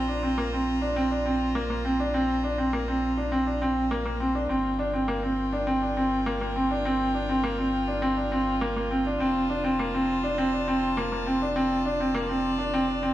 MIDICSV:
0, 0, Header, 1, 4, 480
1, 0, Start_track
1, 0, Key_signature, -2, "major"
1, 0, Tempo, 588235
1, 1751, Time_signature, 4, 2, 24, 8
1, 10719, End_track
2, 0, Start_track
2, 0, Title_t, "String quartet"
2, 0, Program_c, 0, 48
2, 0, Note_on_c, 0, 65, 63
2, 0, Note_on_c, 0, 72, 56
2, 0, Note_on_c, 0, 82, 74
2, 3635, Note_off_c, 0, 82, 0
2, 3637, Note_off_c, 0, 65, 0
2, 3637, Note_off_c, 0, 72, 0
2, 3667, Note_on_c, 0, 65, 68
2, 3667, Note_on_c, 0, 79, 74
2, 3670, Note_on_c, 0, 70, 61
2, 7476, Note_off_c, 0, 79, 0
2, 7478, Note_off_c, 0, 70, 0
2, 7515, Note_on_c, 0, 72, 64
2, 7516, Note_on_c, 0, 81, 78
2, 9414, Note_off_c, 0, 72, 0
2, 9436, Note_on_c, 0, 74, 61
2, 10719, Note_off_c, 0, 65, 0
2, 10719, Note_off_c, 0, 74, 0
2, 10719, Note_off_c, 0, 81, 0
2, 10719, End_track
3, 0, Start_track
3, 0, Title_t, "Upright piano"
3, 0, Program_c, 1, 0
3, 66, Note_on_c, 1, 62, 57
3, 150, Note_off_c, 1, 62, 0
3, 186, Note_on_c, 1, 60, 58
3, 271, Note_off_c, 1, 60, 0
3, 307, Note_on_c, 1, 58, 74
3, 391, Note_off_c, 1, 58, 0
3, 430, Note_on_c, 1, 60, 57
3, 596, Note_off_c, 1, 60, 0
3, 664, Note_on_c, 1, 62, 62
3, 749, Note_off_c, 1, 62, 0
3, 785, Note_on_c, 1, 60, 76
3, 870, Note_off_c, 1, 60, 0
3, 905, Note_on_c, 1, 62, 60
3, 990, Note_off_c, 1, 62, 0
3, 1025, Note_on_c, 1, 60, 66
3, 1192, Note_off_c, 1, 60, 0
3, 1266, Note_on_c, 1, 58, 76
3, 1350, Note_off_c, 1, 58, 0
3, 1386, Note_on_c, 1, 58, 64
3, 1470, Note_off_c, 1, 58, 0
3, 1508, Note_on_c, 1, 60, 60
3, 1592, Note_off_c, 1, 60, 0
3, 1630, Note_on_c, 1, 62, 67
3, 1713, Note_off_c, 1, 62, 0
3, 1747, Note_on_c, 1, 60, 73
3, 1914, Note_off_c, 1, 60, 0
3, 1989, Note_on_c, 1, 62, 65
3, 2072, Note_off_c, 1, 62, 0
3, 2108, Note_on_c, 1, 60, 58
3, 2191, Note_off_c, 1, 60, 0
3, 2229, Note_on_c, 1, 58, 69
3, 2312, Note_off_c, 1, 58, 0
3, 2351, Note_on_c, 1, 60, 57
3, 2516, Note_off_c, 1, 60, 0
3, 2590, Note_on_c, 1, 62, 56
3, 2673, Note_off_c, 1, 62, 0
3, 2708, Note_on_c, 1, 60, 69
3, 2791, Note_off_c, 1, 60, 0
3, 2828, Note_on_c, 1, 62, 58
3, 2912, Note_off_c, 1, 62, 0
3, 2952, Note_on_c, 1, 60, 70
3, 3117, Note_off_c, 1, 60, 0
3, 3191, Note_on_c, 1, 58, 76
3, 3274, Note_off_c, 1, 58, 0
3, 3309, Note_on_c, 1, 58, 62
3, 3392, Note_off_c, 1, 58, 0
3, 3430, Note_on_c, 1, 60, 61
3, 3513, Note_off_c, 1, 60, 0
3, 3549, Note_on_c, 1, 62, 58
3, 3633, Note_off_c, 1, 62, 0
3, 3666, Note_on_c, 1, 60, 67
3, 3833, Note_off_c, 1, 60, 0
3, 3908, Note_on_c, 1, 62, 63
3, 3992, Note_off_c, 1, 62, 0
3, 4027, Note_on_c, 1, 60, 60
3, 4111, Note_off_c, 1, 60, 0
3, 4145, Note_on_c, 1, 58, 73
3, 4230, Note_off_c, 1, 58, 0
3, 4267, Note_on_c, 1, 60, 57
3, 4433, Note_off_c, 1, 60, 0
3, 4509, Note_on_c, 1, 62, 63
3, 4592, Note_off_c, 1, 62, 0
3, 4626, Note_on_c, 1, 60, 74
3, 4710, Note_off_c, 1, 60, 0
3, 4748, Note_on_c, 1, 62, 55
3, 4832, Note_off_c, 1, 62, 0
3, 4871, Note_on_c, 1, 60, 64
3, 5036, Note_off_c, 1, 60, 0
3, 5110, Note_on_c, 1, 58, 75
3, 5193, Note_off_c, 1, 58, 0
3, 5231, Note_on_c, 1, 58, 63
3, 5314, Note_off_c, 1, 58, 0
3, 5351, Note_on_c, 1, 60, 64
3, 5434, Note_off_c, 1, 60, 0
3, 5474, Note_on_c, 1, 62, 64
3, 5555, Note_off_c, 1, 62, 0
3, 5592, Note_on_c, 1, 60, 77
3, 5757, Note_off_c, 1, 60, 0
3, 5830, Note_on_c, 1, 62, 61
3, 5913, Note_off_c, 1, 62, 0
3, 5951, Note_on_c, 1, 60, 59
3, 6034, Note_off_c, 1, 60, 0
3, 6067, Note_on_c, 1, 58, 78
3, 6151, Note_off_c, 1, 58, 0
3, 6187, Note_on_c, 1, 60, 57
3, 6354, Note_off_c, 1, 60, 0
3, 6425, Note_on_c, 1, 62, 59
3, 6510, Note_off_c, 1, 62, 0
3, 6544, Note_on_c, 1, 60, 76
3, 6629, Note_off_c, 1, 60, 0
3, 6665, Note_on_c, 1, 62, 59
3, 6749, Note_off_c, 1, 62, 0
3, 6787, Note_on_c, 1, 60, 69
3, 6954, Note_off_c, 1, 60, 0
3, 7028, Note_on_c, 1, 58, 78
3, 7112, Note_off_c, 1, 58, 0
3, 7152, Note_on_c, 1, 58, 65
3, 7234, Note_off_c, 1, 58, 0
3, 7268, Note_on_c, 1, 60, 64
3, 7352, Note_off_c, 1, 60, 0
3, 7393, Note_on_c, 1, 62, 65
3, 7475, Note_off_c, 1, 62, 0
3, 7509, Note_on_c, 1, 60, 73
3, 7675, Note_off_c, 1, 60, 0
3, 7747, Note_on_c, 1, 62, 67
3, 7831, Note_off_c, 1, 62, 0
3, 7866, Note_on_c, 1, 60, 67
3, 7950, Note_off_c, 1, 60, 0
3, 7991, Note_on_c, 1, 58, 75
3, 8074, Note_off_c, 1, 58, 0
3, 8114, Note_on_c, 1, 60, 63
3, 8278, Note_off_c, 1, 60, 0
3, 8350, Note_on_c, 1, 62, 67
3, 8433, Note_off_c, 1, 62, 0
3, 8470, Note_on_c, 1, 60, 80
3, 8553, Note_off_c, 1, 60, 0
3, 8592, Note_on_c, 1, 62, 60
3, 8674, Note_off_c, 1, 62, 0
3, 8713, Note_on_c, 1, 60, 70
3, 8877, Note_off_c, 1, 60, 0
3, 8953, Note_on_c, 1, 58, 75
3, 9035, Note_off_c, 1, 58, 0
3, 9074, Note_on_c, 1, 58, 59
3, 9155, Note_off_c, 1, 58, 0
3, 9193, Note_on_c, 1, 60, 64
3, 9275, Note_off_c, 1, 60, 0
3, 9317, Note_on_c, 1, 62, 66
3, 9397, Note_off_c, 1, 62, 0
3, 9432, Note_on_c, 1, 60, 79
3, 9597, Note_off_c, 1, 60, 0
3, 9674, Note_on_c, 1, 62, 67
3, 9755, Note_off_c, 1, 62, 0
3, 9795, Note_on_c, 1, 60, 62
3, 9876, Note_off_c, 1, 60, 0
3, 9910, Note_on_c, 1, 58, 78
3, 9993, Note_off_c, 1, 58, 0
3, 10030, Note_on_c, 1, 60, 59
3, 10195, Note_off_c, 1, 60, 0
3, 10267, Note_on_c, 1, 62, 62
3, 10351, Note_off_c, 1, 62, 0
3, 10392, Note_on_c, 1, 60, 82
3, 10475, Note_off_c, 1, 60, 0
3, 10509, Note_on_c, 1, 62, 60
3, 10592, Note_off_c, 1, 62, 0
3, 10630, Note_on_c, 1, 60, 73
3, 10719, Note_off_c, 1, 60, 0
3, 10719, End_track
4, 0, Start_track
4, 0, Title_t, "Sub bass"
4, 0, Program_c, 2, 38
4, 0, Note_on_c, 2, 34, 73
4, 3645, Note_off_c, 2, 34, 0
4, 3665, Note_on_c, 2, 31, 77
4, 7484, Note_off_c, 2, 31, 0
4, 7509, Note_on_c, 2, 29, 82
4, 10719, Note_off_c, 2, 29, 0
4, 10719, End_track
0, 0, End_of_file